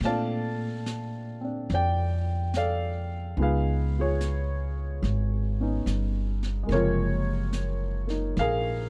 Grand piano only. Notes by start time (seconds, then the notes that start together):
0.04 A3 C4 D4 F4 D5 F5 A5
1.41 C4 D4
1.74 D5 G5
2.56 A4 D5 F5
3.37 G#3 B3 D#4 F4
3.41 G#4 B4 F5
3.99 F4 G#4 C#5
5.60 B3 C#4 D#4
6.63 G#3 A#3
6.71 C3 F3 F4 A#4 C#5
8.07 A#3 D#4
8.39 G#4 A#4 F5